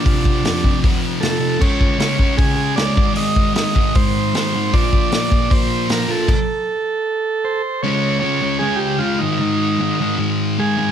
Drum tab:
CC |--------|x-------|--------|--------|
HH |o-o-o-o-|--o-o-o-|o-o-o-o-|o-o-o-o-|
SD |--o---o-|--o---o-|--o---o-|--o---o-|
BD |oo-oo---|oo-oo--o|-o-oo---|oo-oo---|

CC |x-------|--------|--------|
HH |--------|--------|--------|
SD |--------|--------|--------|
BD |o-------|--------|--------|